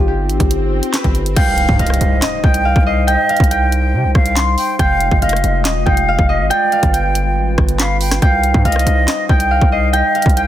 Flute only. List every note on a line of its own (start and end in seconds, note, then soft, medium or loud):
1.36 1.77 F5 loud
1.80 2.40 D#5 medium
2.43 2.84 G5 medium
2.87 3.07 F5 medium
3.08 3.48 D#5 loud
3.50 4.11 G5 medium
4.15 4.55 F5 medium
4.58 4.78 G5 medium
4.80 5.20 F5 loud
5.23 5.83 D#5 medium
5.86 6.27 F5 medium
6.29 6.50 D#5 medium
6.51 6.91 D5 medium
6.94 7.56 G5 medium
7.80 8.00 F5 medium
8.01 8.21 G5 medium
8.23 8.63 F5 loud
8.65 9.26 D#5 medium
9.29 9.69 G5 medium
9.72 9.93 F5 medium
9.93 10.34 D#5 loud
10.36 10.47 G5 medium